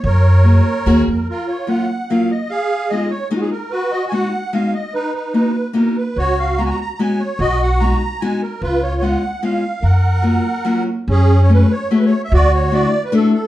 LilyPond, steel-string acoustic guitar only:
\new Staff \with { instrumentName = "Steel-string acoustic guitar" } { \time 3/4 \key fis \major \tempo 4 = 148 r4 <ais cis' fis' gis'>8 r8 <ais cis' fis' gis'>8 r8 | r4 <fis ais cis' eis'>8 r8 <fis ais cis' eis'>8 r8 | r4 <aes ces' ees' f'>8 r8 <aes ces' ees' f'>8 r8 | r4 <gis b dis' fis'>8 r8 <gis b dis' fis'>8 r8 |
r4 <ais b dis' fis'>8 r8 <ais b dis' fis'>8 r8 | r4 <gis b cis' fis'>8 r8 <gis b cis' fis'>8 r8 | r4 <gis b dis' fis'>8 r8 <gis b dis' fis'>8 r8 | r4 <gis b cis' eis'>8 r8 <gis b cis' eis'>8 r8 |
r4 <fis ais cis' eis'>8 r8 <fis ais cis' eis'>8 r8 | \key fis \minor r4 <a cis' fis' gis'>8 r8 <a cis' fis' gis'>8 r8 | r4 <a d' e' fis'>8 r8 <a d' e' fis'>8 r8 | }